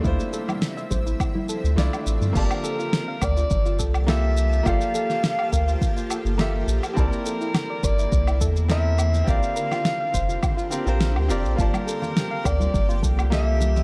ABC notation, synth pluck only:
X:1
M:4/4
L:1/16
Q:"Swing 16ths" 1/4=104
K:Gdor
V:1 name="Synth pluck"
E z A E z e c E z E A z4 z | F z A F z f B F z F A z4 z | F z A F z f B F z F A z4 z | E z A E z d B E z E A z4 z |
F z B F z f c F z F f z B z3 | F z A F z f B F z F A z4 z |]